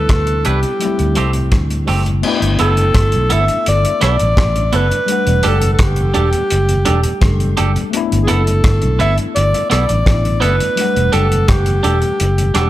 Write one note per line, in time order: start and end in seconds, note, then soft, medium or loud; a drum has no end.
0.00 0.77 G3 medium
0.00 0.79 B3 medium
0.00 0.79 D4 medium
0.00 0.84 E4 medium
0.00 0.47 A4 medium
0.09 0.43 D2 medium
0.09 kick loud
0.09 cross-stick loud
0.09 closed hi-hat loud
0.27 0.38 C3 medium
0.27 closed hi-hat soft
0.44 0.63 C2 medium
0.44 0.55 E3 medium
0.44 0.55 B3 medium
0.44 0.56 D4 medium
0.44 0.59 D4 medium
0.44 0.59 E4 medium
0.44 1.52 G4 medium
0.44 0.59 B4 medium
0.44 closed hi-hat medium
0.62 0.73 C3 medium
0.62 closed hi-hat soft
0.79 0.87 F#3 medium
0.79 2.21 A3 medium
0.79 2.22 C4 medium
0.79 closed hi-hat medium
0.85 2.23 G3 medium
0.85 2.23 E4 medium
0.98 1.09 D2 medium
0.98 1.16 D2 medium
0.98 1.09 A2 medium
0.98 closed hi-hat medium
1.14 1.26 G3 medium
1.14 1.30 A3 medium
1.14 1.26 C4 medium
1.14 1.31 C4 medium
1.14 1.26 D4 medium
1.14 closed hi-hat medium
1.18 1.51 C2 medium
1.18 1.31 G4 medium
1.33 1.44 D2 medium
1.33 1.44 A2 soft
1.33 closed hi-hat medium
1.52 1.86 D2 medium
1.52 kick loud
1.52 cross-stick loud
1.52 closed hi-hat medium
1.69 1.80 D2 soft
1.69 1.80 A2 soft
1.69 closed hi-hat soft
1.85 2.22 F#1 medium
1.85 1.97 G3 medium
1.85 2.01 A3 medium
1.85 1.97 C4 medium
1.85 2.02 C4 medium
1.85 1.97 D4 medium
1.85 2.02 G4 medium
1.85 open hi-hat soft
2.04 2.15 D2 medium
2.04 2.15 A2 medium
2.04 closed hi-hat soft
2.22 5.03 A3 medium
2.22 5.04 B3 medium
2.22 5.05 D4 medium
2.22 crash medium
2.28 5.06 E4 medium
2.40 2.58 G1 loud
2.40 2.51 G2 medium
2.40 2.51 D3 medium
2.40 closed hi-hat medium
2.56 2.68 A3 medium
2.56 2.69 B3 medium
2.56 2.73 B3 medium
2.56 2.69 E4 medium
2.56 2.73 E4 medium
2.56 2.73 A4 medium
2.56 closed hi-hat medium
2.61 2.93 F#1 loud
2.61 3.34 A4 loud
2.75 2.86 G2 medium
2.75 2.86 D3 medium
2.75 closed hi-hat soft
2.95 3.12 G1 medium
2.95 kick loud
2.95 cross-stick loud
2.95 closed hi-hat loud
3.11 3.30 B1 medium
3.11 3.22 G2 medium
3.11 3.22 D3 medium
3.11 closed hi-hat medium
3.29 3.48 G1 medium
3.29 3.40 A3 medium
3.29 3.40 B3 medium
3.29 3.44 B3 medium
3.29 3.40 E4 medium
3.29 3.44 E4 medium
3.29 3.44 A4 medium
3.29 3.67 E5 loud
3.29 closed hi-hat medium
3.47 3.58 G2 medium
3.47 3.58 D3 medium
3.47 closed hi-hat soft
3.66 3.84 G1 medium
3.66 4.00 D5 loud
3.66 closed hi-hat medium
3.82 3.93 G2 medium
3.82 3.93 D3 medium
3.82 closed hi-hat medium
3.99 4.19 B1 medium
3.99 4.11 A3 medium
3.99 4.11 B3 medium
3.99 4.15 B3 medium
3.99 4.11 E4 medium
3.99 4.15 E4 medium
3.99 4.15 A4 medium
3.99 4.77 D5 loud
3.99 cross-stick medium
3.99 closed hi-hat medium
4.18 4.37 A1 medium
4.18 4.29 G2 medium
4.18 4.29 D3 medium
4.18 closed hi-hat medium
4.37 4.71 A1 loud
4.37 kick loud
4.37 cross-stick loud
4.37 closed hi-hat medium
4.55 4.65 G2 medium
4.55 4.65 D3 medium
4.55 closed hi-hat medium
4.72 4.90 F#1 medium
4.72 4.83 A3 medium
4.72 4.83 B3 medium
4.72 4.86 B3 medium
4.72 4.83 E4 medium
4.72 4.86 E4 medium
4.72 4.87 A4 medium
4.72 5.49 B4 loud
4.72 closed hi-hat medium
4.91 5.01 G2 medium
4.91 5.01 D3 medium
4.91 closed hi-hat medium
5.06 7.17 G3 medium
5.06 7.17 A3 medium
5.06 7.18 D4 medium
5.06 closed hi-hat medium
5.12 7.19 F#5 medium
5.26 5.43 E1 loud
5.26 5.36 E2 medium
5.26 5.36 B2 medium
5.26 closed hi-hat medium
5.43 5.78 F#1 loud
5.43 5.54 G3 medium
5.43 5.54 A3 medium
5.43 5.57 D4 medium
5.43 5.54 D4 medium
5.43 5.54 F#4 medium
5.43 5.57 G4 medium
5.43 5.58 A4 medium
5.43 closed hi-hat medium
5.48 5.73 A4 medium
5.61 5.71 E2 medium
5.61 5.71 B2 medium
5.61 closed hi-hat medium
5.74 5.84 A4 medium
5.79 6.13 F#1 medium
5.79 7.59 G4 medium
5.79 kick loud
5.79 cross-stick loud
5.79 closed hi-hat loud
5.96 6.07 E2 medium
5.96 6.07 B2 medium
5.96 closed hi-hat medium
6.14 6.33 E1 medium
6.14 6.25 G3 medium
6.14 6.25 A3 medium
6.14 6.25 D4 medium
6.14 6.28 D4 medium
6.14 6.25 F#4 medium
6.14 6.28 G4 loud
6.14 6.29 A4 medium
6.14 closed hi-hat medium
6.32 6.43 E2 medium
6.32 6.43 B2 medium
6.32 closed hi-hat soft
6.50 6.85 F#1 medium
6.50 closed hi-hat medium
6.68 6.78 E2 medium
6.68 6.78 B2 medium
6.68 closed hi-hat medium
6.85 7.04 E1 medium
6.85 6.96 G3 medium
6.85 6.96 A3 medium
6.85 6.99 D4 medium
6.85 6.96 D4 medium
6.85 6.96 F#4 medium
6.85 7.00 G4 medium
6.85 7.00 A4 medium
6.85 closed hi-hat medium
7.03 7.14 E2 medium
7.03 7.14 B2 medium
7.03 closed hi-hat medium
7.20 7.55 F#1 medium
7.20 7.92 G3 medium
7.20 7.90 A3 soft
7.20 7.93 D4 medium
7.20 7.94 A4 medium
7.20 kick loud
7.20 cross-stick loud
7.20 closed hi-hat medium
7.39 7.49 E2 medium
7.39 7.50 B2 medium
7.39 closed hi-hat medium
7.56 7.75 F#1 medium
7.56 7.67 G3 medium
7.56 7.67 A3 medium
7.56 7.67 D4 medium
7.56 7.71 D4 medium
7.56 7.67 F#4 medium
7.56 7.71 G4 loud
7.56 7.71 A4 loud
7.56 closed hi-hat medium
7.75 7.85 E2 medium
7.75 7.85 B2 medium
7.75 closed hi-hat medium
7.91 10.01 A3 medium
7.91 10.02 B3 medium
7.91 10.03 D4 medium
7.91 closed hi-hat medium
7.97 10.04 E4 medium
8.11 8.28 G1 loud
8.11 8.21 G2 medium
8.11 8.21 D3 medium
8.11 closed hi-hat medium
8.23 8.32 G#4 medium
8.27 8.63 F#1 loud
8.27 8.39 A3 medium
8.27 8.41 B3 medium
8.27 8.39 B3 medium
8.27 8.42 E4 loud
8.27 8.39 E4 medium
8.27 8.42 A4 medium
8.27 9.00 A4 loud
8.27 closed hi-hat medium
8.47 8.57 G2 medium
8.47 8.57 D3 medium
8.47 closed hi-hat medium
8.64 8.81 G1 loud
8.64 kick loud
8.64 cross-stick loud
8.64 closed hi-hat loud
8.82 8.99 B1 medium
8.82 8.92 G2 medium
8.82 8.92 D3 medium
8.82 closed hi-hat medium
8.99 9.17 G1 loud
8.99 9.10 A3 medium
8.99 9.13 B3 medium
8.99 9.10 B3 medium
8.99 9.13 E4 loud
8.99 9.10 E4 medium
8.99 9.14 A4 medium
8.99 9.16 E5 loud
8.99 closed hi-hat medium
9.18 9.28 G2 medium
9.18 9.28 D3 medium
9.18 closed hi-hat soft
9.35 9.53 G1 loud
9.35 9.68 D5 loud
9.35 closed hi-hat medium
9.53 9.63 G2 medium
9.53 9.63 D3 medium
9.53 closed hi-hat medium
9.70 9.88 B1 medium
9.70 9.81 A3 medium
9.70 9.84 B3 medium
9.70 9.81 B3 medium
9.70 9.84 E4 medium
9.70 9.81 E4 medium
9.70 9.85 A4 loud
9.70 10.42 D5 loud
9.70 cross-stick medium
9.70 closed hi-hat medium
9.89 10.06 A1 medium
9.89 9.99 G2 medium
9.89 9.99 D3 medium
9.89 closed hi-hat medium
10.05 10.40 A1 medium
10.05 10.76 A3 medium
10.05 10.77 B3 soft
10.05 10.78 D4 soft
10.05 10.78 E4 medium
10.05 kick loud
10.05 cross-stick loud
10.05 closed hi-hat medium
10.25 10.35 G2 medium
10.25 10.35 D3 medium
10.25 closed hi-hat medium
10.40 10.59 F#1 medium
10.40 10.52 A3 medium
10.40 10.55 B3 medium
10.40 10.52 B3 medium
10.40 10.55 E4 loud
10.40 10.52 E4 medium
10.40 10.55 A4 loud
10.40 11.14 B4 loud
10.40 closed hi-hat medium
10.59 10.70 G2 medium
10.59 10.70 D3 medium
10.59 closed hi-hat medium
10.76 10.83 F#3 medium
10.76 12.52 A3 medium
10.76 12.53 D4 medium
10.76 closed hi-hat medium
10.81 12.53 G3 medium
10.81 12.54 F#5 medium
10.96 11.12 E1 loud
10.96 11.06 E2 medium
10.96 11.06 B2 medium
10.96 closed hi-hat medium
11.12 11.47 F#1 loud
11.12 11.23 G3 medium
11.12 11.23 A3 medium
11.12 11.26 D4 medium
11.12 11.23 D4 medium
11.12 11.23 F#4 medium
11.12 11.27 G4 medium
11.12 11.50 A4 medium
11.12 11.27 A4 medium
11.12 closed hi-hat medium
11.31 11.41 E2 medium
11.31 11.41 B2 medium
11.31 closed hi-hat soft
11.48 11.82 F#1 loud
11.48 12.70 G4 medium
11.48 kick loud
11.48 cross-stick loud
11.48 closed hi-hat loud
11.66 11.77 E2 medium
11.66 11.77 B2 medium
11.66 closed hi-hat medium
11.83 12.02 E1 medium
11.83 11.94 G3 medium
11.83 11.95 A3 medium
11.83 11.97 D4 medium
11.83 11.95 D4 medium
11.83 11.95 F#4 medium
11.83 11.98 G4 medium
11.83 11.98 A4 medium
11.83 closed hi-hat medium
12.02 12.12 E2 medium
12.02 12.12 B2 medium
12.02 closed hi-hat soft
12.20 12.54 F#1 medium
12.20 closed hi-hat medium
12.37 12.48 E2 medium
12.37 12.48 B2 medium
12.37 closed hi-hat medium
12.54 12.70 E1 medium
12.54 12.70 G3 medium
12.54 12.66 G3 medium
12.54 12.66 A3 medium
12.54 12.70 A3 medium
12.54 12.68 D4 medium
12.54 12.66 D4 medium
12.54 12.70 D4 medium
12.54 12.66 F#4 medium
12.54 12.69 G4 medium
12.54 12.69 A4 loud
12.54 12.70 F#5 medium
12.54 cross-stick medium
12.54 closed hi-hat medium